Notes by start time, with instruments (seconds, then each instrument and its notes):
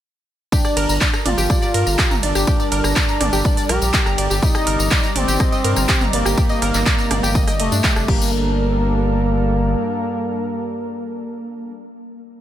0.52 synth drone G2 G3, analog synth pad G3 A4 A#4 D5, analog synth lead D4, synth pluck G4 G5, kick, ride, tambourine
0.65 synth pluck D5 D6, cross-stick, tambourine
0.77 analog synth bass G1, synth pluck A#4 A#5, open hi-hat, ride
0.89 analog synth bass G1, synth pluck A#5 A#6, tambourine
1.01 synth pluck D5 D6, kick, clap, ride, tambourine
1.13 synth pluck A#5 A#6, cross-stick, tambourine
1.25 analog synth bass G1, analog synth lead F4, synth pluck D5 D6, mid tom, open hi-hat, ride
1.38 analog synth bass G1, synth pluck G4 G5, tambourine
1.50 synth pluck D5 D6, kick, cross-stick, ride, tambourine
1.62 synth pluck D5 D6, tambourine
1.74 analog synth bass G2, synth pluck A#4 A#5, open hi-hat, ride
1.87 analog synth bass G1, synth pluck A#5 A#6, tambourine
1.99 synth pluck G4 G5, kick, cross-stick, clap, ride, tambourine
2.11 analog synth bass G1, synth pluck A#5 A#6, mid tom, tambourine
2.23 analog synth bass G1, analog synth lead D4, synth pluck D5 D6, open hi-hat, ride
2.35 analog synth bass G1, synth pluck G4 G5, cross-stick, tambourine
2.47 synth pluck G4 G5, kick, ride, tambourine
2.60 synth pluck D5 D6, tambourine
2.72 analog synth bass G1, synth pluck A#4 A#5, open hi-hat, ride
2.84 analog synth bass G1, synth pluck A#5 A#6, cross-stick, tambourine
2.96 synth pluck D5 D6, kick, clap, ride, tambourine
3.09 synth pluck A#5 A#6, tambourine
3.21 analog synth bass G1, synth pluck D5 D6, cross-stick, mid tom, open hi-hat, ride
3.33 analog synth bass G1, synth pluck G4 G5, tambourine
3.45 synth pluck D5 D6, kick, ride, tambourine
3.57 synth pluck D5 D6, open hi-hat, tambourine
3.69 analog synth bass A#1, analog synth lead G4, synth pluck A#4 A#5, cross-stick, open hi-hat, ride
3.82 analog synth bass A#1, synth pluck A#5 A#6, tambourine
3.94 synth pluck G4 G5, kick, clap, ride, tambourine
4.06 analog synth bass G1, synth pluck A#5 A#6, cross-stick, tambourine
4.18 analog synth bass G1, synth pluck D5 D6, open hi-hat, ride
4.30 analog synth bass G1, synth pluck G4 G5, tambourine
4.42 analog synth pad C3 G3 D#4, analog synth lead D#4, synth pluck G4 G5, kick, ride, tambourine
4.55 synth pluck D#5 D#6, cross-stick, tambourine
4.67 analog synth bass G1, synth pluck A#4 A#5, open hi-hat, ride
4.79 analog synth bass G1, synth pluck A#5 A#6, tambourine
4.91 synth pluck D5 D6, kick, cross-stick, clap, ride, tambourine
5.03 synth pluck A#5 A#6, tambourine
5.16 analog synth bass G1, analog synth lead C4, synth pluck D5 D6, mid tom, open hi-hat, ride
5.28 analog synth bass G1, synth pluck G4 G5, tambourine
5.40 synth pluck D#5 D#6, kick, cross-stick, ride, tambourine
5.52 synth pluck D#5 D#6, tambourine
5.64 analog synth bass G2, synth pluck A#4 A#5, open hi-hat, ride
5.76 analog synth bass G1, synth pluck A#5 A#6, cross-stick, tambourine
5.88 synth pluck G4 G5, kick, clap, ride, tambourine
6.01 analog synth bass G1, synth pluck A#5 A#6, mid tom, tambourine
6.13 analog synth bass G1, analog synth lead A#3, synth pluck D5 D6, open hi-hat, ride
6.25 analog synth bass G1, synth pluck G4 G5, cross-stick, tambourine
6.37 synth pluck G4 G5, kick, ride, tambourine
6.49 synth pluck D#5 D#6, tambourine
6.62 analog synth bass G1, synth pluck A#4 A#5, cross-stick, open hi-hat, ride
6.74 analog synth bass G1, synth pluck A#5 A#6, clap, tambourine
6.86 synth pluck D5 D6, kick, clap, ride, tambourine
6.98 synth pluck A#5 A#6, tambourine
7.11 analog synth bass G1, synth pluck D5 D6, cross-stick, mid tom, open hi-hat, ride
7.23 analog synth bass G1, synth pluck G4 G5, tambourine
7.35 synth pluck D#5 D#6, kick, ride, tambourine
7.47 synth pluck D#5 D#6, cross-stick, open hi-hat, tambourine
7.59 analog synth bass F1, analog synth lead A3, synth pluck D#5 D#6, open hi-hat, ride
7.72 analog synth bass G2, synth pluck D4 D5, tambourine
7.84 synth pluck G4 G5, kick, clap, ride, tambourine
7.96 analog synth bass F1, synth pluck D4 D5, cross-stick, tambourine
8.08 analog synth bass G1, synth drone G2 G3, analog synth pad G3 D4 A4 A#4, analog synth lead A#3, synth pluck G4, kick, crash
8.21 tambourine